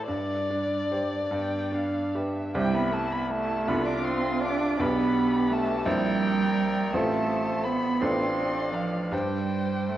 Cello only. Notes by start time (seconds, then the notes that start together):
0.08 G3
1.32 B3
2.55 G3
2.73 B3
2.91 A3
3.10 B3
3.30 A3
3.67 B3
3.86 D4
4.05 C4
4.42 D4
4.78 B3
5.50 A3
5.85 G3
6.93 A3
7.65 B3
8.00 C4
8.75 F3
9.13 G3
9.89 A3